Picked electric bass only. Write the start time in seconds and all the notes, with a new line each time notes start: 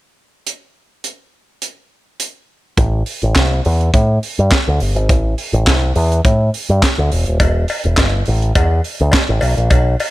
2.78 A1
3.23 A1
3.36 C2
3.66 E2
3.94 A2
4.39 G2
4.68 D2
4.81 G1
4.95 G#1
5.10 A1
5.53 A1
5.67 C2
5.96 E2
6.25 A2
6.69 G2
6.98 D2
7.12 E1
7.28 D#1
7.40 E1
7.85 E1
7.98 G1
8.28 A1
8.56 E2
9.01 D2
9.29 A1
9.42 B1
9.57 A#1
9.71 B1